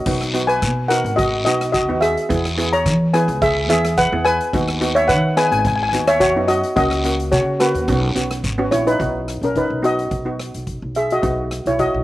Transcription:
Already playing: F#4 D#5
0.06 B1 B3 D#4 F#4, kick, crash, long guiro
0.21 cross-stick
0.34 B3 D#4 F#4, closed hi-hat
0.47 B4 G#5, closed hi-hat
0.62 B2, kick, cross-stick, closed hi-hat, short guiro
0.88 B3 D#4 F#4 A#4 F#5, cross-stick, closed hi-hat, short guiro
1.04 G#1, closed hi-hat
1.16 F#4 D#5, kick, closed hi-hat, long guiro
1.45 B1 B3 D#4 F#4 D#5, closed hi-hat, short guiro
1.61 cross-stick, closed hi-hat
1.72 F#4 D#5, kick, closed hi-hat, short guiro
1.89 D#2 B3 D#4 F#4
2.01 G#4 E5, cross-stick, closed hi-hat
2.17 closed hi-hat
2.29 E2 B3 E4 G#4, kick, closed hi-hat, long guiro
2.45 cross-stick
2.58 B3 E4 G#4, closed hi-hat
2.73 C#5 A#5, closed hi-hat
2.86 E3, kick, cross-stick, closed hi-hat, short guiro
3.14 B3 E4 G#4 B4 G#5, cross-stick, closed hi-hat
3.28 C#2, closed hi-hat
3.42 G#4 E5, kick, closed hi-hat, long guiro
3.69 E2 B3 E4 G#4 E5, closed hi-hat, short guiro
3.85 cross-stick, closed hi-hat
3.98 B4 F#5, kick, closed hi-hat, short guiro
4.12 E2 B3 E4 G#4
4.25 B4 G#5, cross-stick, closed hi-hat
4.41 closed hi-hat
4.53 D#2 B3 D#4 F#4, kick, closed hi-hat, long guiro
4.68 cross-stick
4.81 B3 D#4 F#4, closed hi-hat
4.95 C#5 E5, closed hi-hat
5.08 D#3 B4 F#5, kick, cross-stick, closed hi-hat, short guiro
5.37 B3 D#4 G#4 B4 G#5, cross-stick, closed hi-hat, short guiro
5.45 G#5
5.52 G#1 G#5, closed hi-hat
5.59 G#5
5.65 G#5, kick, closed hi-hat, long guiro
5.76 G#5
5.83 G#5
5.89 D#2 B3 G#5
5.93 D#4 F#4, closed hi-hat, short guiro
6.08 C#5 E5, cross-stick, closed hi-hat
6.20 F#4 C#5, kick, closed hi-hat, short guiro
6.36 F#2 B3 D#4 F#4
6.48 F#4 D#5, cross-stick, closed hi-hat
6.63 closed hi-hat
6.76 C#2 A#3 C#4 F#4 D#5, kick, closed hi-hat, long guiro
6.91 cross-stick
7.04 A#3 C#4 F#4, closed hi-hat
7.20 closed hi-hat
7.32 C#3 F#4 C#5, kick, closed hi-hat, short guiro
7.60 A#3 C#4 F#4 B4, cross-stick, closed hi-hat, short guiro
7.75 D#2, closed hi-hat
7.88 B1 B3 C#4 F#4, kick, closed hi-hat, long guiro
8.15 B1 B3 C#4 F#4, closed hi-hat, short guiro
8.31 cross-stick, closed hi-hat
8.44 G#1, kick, closed hi-hat, short guiro
8.58 B3 C#4 F#4
8.71 A#1 E4 C#5, cross-stick, closed hi-hat
8.87 D#4 B4, closed hi-hat
8.99 B1 B3 D#4 F#4, kick, closed hi-hat
9.28 cross-stick, closed hi-hat
9.41 B1 C#4 A#4, closed hi-hat
9.56 D#4 B4, kick, closed hi-hat
9.70 B1
9.82 B3 D#4 F#4 D#5, closed hi-hat
9.99 closed hi-hat
10.11 B1, kick, closed hi-hat
10.25 B3 D#4 F#4
10.40 cross-stick, closed hi-hat
10.54 B1, closed hi-hat
10.67 kick, closed hi-hat
10.82 B1
10.95 G#4 E5, closed hi-hat
11.10 F#4 D#5, closed hi-hat
11.22 B1 B3 D#4 F#4, kick, closed hi-hat
11.51 cross-stick, closed hi-hat
11.66 B1 E4 C#5, closed hi-hat
11.79 F#4 D#5, kick, closed hi-hat
11.94 B1

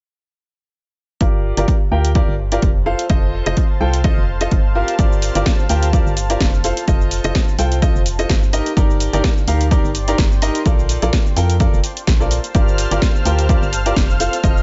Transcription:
1.20 G1 F4 G4 A#4 C5 D5, kick, closed hi-hat
1.57 G1 F4 G4 A#4 D5, closed hi-hat
1.68 A5, kick, closed hi-hat
1.75 F5
1.91 D2 F4 G4 A#4 G5
2.05 closed hi-hat
2.15 F4 G4 A#4 D5, kick, closed hi-hat
2.28 G1
2.52 F4 G4 A#4 D5, closed hi-hat
2.62 F1, kick, closed hi-hat
2.86 F4 A4 C5 F5
2.99 closed hi-hat
3.10 F1 F4 A4 C5 D#5, kick, closed hi-hat
3.46 F1 F4 A4 C5 D#5, closed hi-hat
3.57 kick, closed hi-hat
3.81 C2 F4 A4 C5 G5
3.94 closed hi-hat
4.04 F4 A4 C5 D#5, kick, closed hi-hat
4.17 F1
4.41 F4 A4 C5 D#5, closed hi-hat
4.51 G1, kick, closed hi-hat
4.75 F4 G4 A#4 F5
4.88 closed hi-hat
4.99 G1 F4 G4 A#4 D5, kick, closed hi-hat, shaker
5.12 shaker
5.22 open hi-hat, shaker
5.35 G1 F4 G4 A#4 D5, closed hi-hat, shaker
5.46 kick, snare, closed hi-hat, shaker
5.60 shaker
5.69 D2 F4 G4 A#4 G5, open hi-hat, shaker
5.83 closed hi-hat, shaker
5.93 F4 G4 A#4 D5, kick, closed hi-hat, shaker
6.06 G1, shaker
6.17 open hi-hat, shaker
6.30 F4 G4 A#4 D5, closed hi-hat, shaker
6.40 F1, kick, snare, closed hi-hat, shaker
6.54 shaker
6.64 F4 A4 C5 F5, open hi-hat, shaker
6.77 closed hi-hat, shaker
6.88 F1 F4 A4 C5 D#5, kick, closed hi-hat, shaker
7.01 shaker
7.11 open hi-hat, shaker
7.24 F1 F4 A4 C5 D#5, closed hi-hat, shaker
7.35 kick, snare, closed hi-hat, shaker
7.49 shaker
7.58 C2 F4 A4 C5 G5, open hi-hat, shaker
7.72 closed hi-hat, shaker
7.82 F4 A4 C5 D#5, kick, closed hi-hat, shaker
7.95 F1, shaker
8.06 open hi-hat, shaker
8.19 F4 A4 C5 D#5, closed hi-hat, shaker
8.29 G1, kick, snare, closed hi-hat, shaker
8.43 shaker
8.53 D#4 G4 A#4 D5 D#5, open hi-hat, shaker
8.66 closed hi-hat, shaker
8.77 G1 D#4 G4 A#4 D5, kick, closed hi-hat, shaker
8.87 C6, shaker
8.96 G5
9.00 open hi-hat, shaker
9.13 G1 D#4 G4 A#4 D5, closed hi-hat, shaker
9.24 kick, snare, closed hi-hat, shaker
9.38 shaker
9.47 D2 D#4 G4 A#4 F5, open hi-hat, shaker
9.61 closed hi-hat, shaker
9.71 D#4 G4 A#4 D5, kick, closed hi-hat, shaker
9.84 G1, shaker
9.95 open hi-hat, shaker
10.08 D#4 G4 A#4 D5, closed hi-hat, shaker
10.18 G1, kick, snare, closed hi-hat, shaker
10.32 shaker
10.42 D#4 G4 A#4 D#5, open hi-hat, shaker
10.55 closed hi-hat, shaker
10.66 A#1 F4 A4 A#4 C5 D5, kick, closed hi-hat, shaker
10.79 shaker
10.84 A5
10.89 open hi-hat, shaker
10.97 F5
11.02 A#1 F4 A4 A#4 D5, closed hi-hat, shaker
11.13 kick, snare, closed hi-hat, shaker
11.27 shaker
11.36 F2 F4 A4 A#4 G5, open hi-hat, shaker
11.50 closed hi-hat, shaker
11.60 F4 A4 A#4 D5, kick, closed hi-hat, shaker
11.73 F1, shaker
11.84 open hi-hat, shaker
11.97 closed hi-hat, shaker
12.07 A#1, kick, snare, closed hi-hat, shaker
12.20 F4 A4 A#4 D5, shaker
12.31 open hi-hat, shaker
12.44 closed hi-hat, shaker
12.54 G1 F4 G4 A#4 D5 F6, kick, closed hi-hat, shaker
12.68 shaker
12.78 open hi-hat, shaker
12.91 G1 F4 G4 A#4 D5, closed hi-hat, shaker
13.02 kick, snare, closed hi-hat, shaker
13.16 shaker
13.25 D2 F4 G4 A#4 G5, open hi-hat, shaker
13.39 closed hi-hat, shaker
13.49 F4 G4 A#4 D5, kick, closed hi-hat, shaker
13.62 G1, shaker
13.73 open hi-hat, shaker
13.86 F4 G4 A#4 D5, closed hi-hat, shaker
13.96 F1, kick, snare, closed hi-hat, shaker
14.10 shaker
14.20 F4 A4 C5 F5, open hi-hat, shaker
14.33 closed hi-hat, shaker
14.44 F1 F4 A4 C5 D#5, kick, closed hi-hat, shaker
14.57 shaker

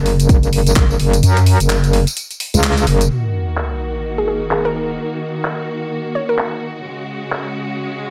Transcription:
Already playing: F#1
0.06 open hi-hat
0.20 closed hi-hat, tambourine
0.29 kick, closed hi-hat, tambourine
0.43 closed hi-hat, tambourine
0.53 open hi-hat
0.67 closed hi-hat, tambourine
0.76 F#1, kick, clap, closed hi-hat
0.91 tambourine
0.99 F#1, open hi-hat
1.13 closed hi-hat, tambourine
1.23 F#2, closed hi-hat, tambourine
1.37 clap, closed hi-hat, tambourine
1.46 open hi-hat
1.60 F#1, closed hi-hat, tambourine
1.70 clap, closed hi-hat, tambourine
1.84 closed hi-hat, tambourine
1.93 open hi-hat
2.07 closed hi-hat, tambourine
2.17 closed hi-hat, tambourine
2.31 closed hi-hat, tambourine
2.40 open hi-hat
2.54 C#2, closed hi-hat, tambourine
2.63 clap, closed hi-hat
2.77 closed hi-hat, tambourine
2.87 F#1, open hi-hat
3.01 closed hi-hat, tambourine
3.10 D#3 A#3 F#4, closed hi-hat, crash, sub drop
3.24 closed hi-hat, tambourine
3.48 closed hi-hat, tambourine
3.57 clap, closed hi-hat, tambourine
3.72 tambourine
3.95 closed hi-hat, tambourine
4.04 closed hi-hat, tambourine
4.18 G#4, tambourine
4.28 G#4
4.42 closed hi-hat, tambourine
4.51 G#4, clap, closed hi-hat, tambourine
4.65 A#4
4.88 closed hi-hat, tambourine
4.98 closed hi-hat, tambourine
5.12 closed hi-hat
5.35 closed hi-hat, tambourine
5.45 clap, closed hi-hat, tambourine
5.59 tambourine
5.82 closed hi-hat, tambourine
5.92 closed hi-hat, tambourine
6.06 closed hi-hat, tambourine
6.15 C#5
6.29 A#4, closed hi-hat, tambourine
6.38 clap, closed hi-hat, tambourine
6.76 closed hi-hat, tambourine
6.85 C#3 G#3, closed hi-hat, tambourine
6.99 closed hi-hat, tambourine
7.23 closed hi-hat, tambourine
7.32 clap, closed hi-hat
7.70 closed hi-hat, tambourine
7.79 closed hi-hat
7.93 closed hi-hat

